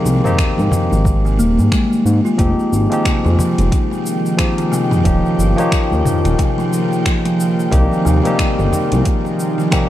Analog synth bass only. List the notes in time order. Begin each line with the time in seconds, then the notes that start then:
0.05 C2
0.58 G#2
0.92 G#1
1.39 D#1
1.58 G#2
2.05 G#2
2.39 F1
2.72 G#1
3.25 F2
3.59 F1
5.05 D#1
5.38 G1
5.91 D#2
6.25 D#1
7.72 C2
8.06 D#2
8.59 G1
8.92 C2